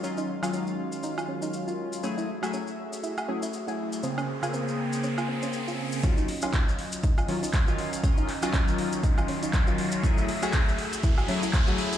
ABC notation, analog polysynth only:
X:1
M:4/4
L:1/16
Q:"Swing 16ths" 1/4=120
K:Ebdor
V:1 name="Analog polysynth"
[E,G,DF]2 z [E,G,DF]12- [E,G,DF] | [G,=A,_F_A]2 z [G,=A,F_A] z6 [G,=A,F_A] z2 [G,=A,F_A]3 | [D,B,CA]2 z [D,B,CA]12- [D,B,CA] | [E,G,DF]2 z [E,G,DF] z6 [E,G,DF] z2 [E,G,DF]3 |
[E,G,DF]2 z [E,G,DF]12- [E,G,DF] | [G,=A,_F_A]2 z [G,=A,F_A] z6 [G,=A,F_A] z2 [G,=A,F_A]3 |]